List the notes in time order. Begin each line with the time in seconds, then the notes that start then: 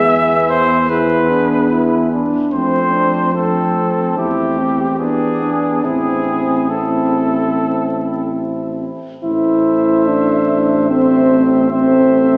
Already playing: E2 B3 G#4 E5
0.07 B3
0.49 C5
0.89 B3 E4 G#4 B4
1.30 D4
1.71 E4
2.12 D4
2.53 F2 A3 C4 C5
2.93 D4
3.34 A3 C4 A4
4.17 E2 A3 C4 E4 G4
4.59 C4
4.99 B3 D4 G#4
5.42 D4
5.84 A1 C4 E4 G#4
6.70 C4 E4 A4
9.24 A1 A3 E4 C5 E5
10.07 D4
10.89 A3 C4 C5 E5
11.71 A3 C4 C5 E5